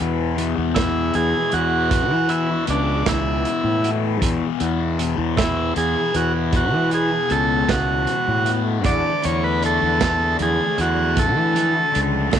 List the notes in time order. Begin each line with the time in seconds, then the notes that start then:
Already playing: E2 E3
0.00 E2 B2
0.36 E2 B2 E3, closed hi-hat
0.58 E2
0.74 E2 B2 E3 E4, kick, snare, closed hi-hat
1.14 E2 G#4, closed hi-hat
1.50 E2 B2 E3 F#4, closed hi-hat
1.89 E2 B2 E3 F#4, kick, closed hi-hat
2.11 E3
2.28 B2 E3 E4, closed hi-hat
2.65 C#2 E2 B2 E3, closed hi-hat
2.70 D4
3.06 C#2 E2 B2 E3 E4, kick, snare, closed hi-hat
3.45 closed hi-hat
3.64 A2
3.82 B2 E3, closed hi-hat
4.20 E2 B2 E3, kick, closed hi-hat
4.60 E2 B2 E3, closed hi-hat
4.99 E2 B2 E3, closed hi-hat
5.18 E2
5.36 E2 B2 E3 E4, kick, snare, closed hi-hat
5.76 E2 G#4, closed hi-hat
6.12 E2 B2 E3 F#4, closed hi-hat
6.51 E2 B2 E3, kick, closed hi-hat
6.56 F#4
6.73 E3
6.90 B2 E3, closed hi-hat
6.94 G#4
7.29 C#2 E2 B2 E3 A4, closed hi-hat
7.68 C#2 E2 B2 E3 F#4, kick, snare, closed hi-hat
8.07 closed hi-hat
8.28 A2
8.45 B2 E3, closed hi-hat
8.83 E2 D3 A3 D4 D5, kick, closed hi-hat, high conga
9.23 E2 A3 D4 C#5, closed hi-hat, low conga
9.44 B4
9.60 D3 A3 D4, closed hi-hat
9.66 A4
9.81 E2, low conga
9.98 D3 A3 D4, kick, snare, closed hi-hat, high conga
10.18 low conga
10.39 E2 G#4, closed hi-hat, low conga
10.78 E2 A3 D4 F#4, closed hi-hat
10.97 low conga
11.15 D3 A3 D4, kick, closed hi-hat, high conga
11.19 A4
11.36 E3, low conga
11.53 A3 D4, closed hi-hat, low conga
11.90 D3 A3 D4
11.95 C#2, closed hi-hat
12.11 low conga
12.30 C#2 D3 A3 D4, kick, snare, closed hi-hat, high conga